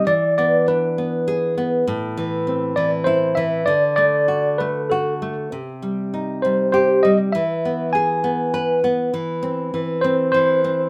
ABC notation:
X:1
M:3/4
L:1/16
Q:1/4=100
K:Em
V:1 name="Tine electric piano"
d2 d2 B6 z2 | z6 d2 c2 e2 | d2 d4 B2 A3 z | z6 c2 c2 _e2 |
e4 ^g6 z2 | z6 c2 c4 |]
V:2 name="Nylon-string guitar"
E,2 B,2 D2 B,2 ^G2 B,2 | A,,2 E,2 C2 E,2 E2 E,2 | D,2 A,2 F2 A,2 F2 A,2 | C,2 G,2 _E2 G,2 G2 G,2 |
E,2 B,2 ^G2 B,2 B2 B,2 | E,2 C2 E,2 C2 E,2 C2 |]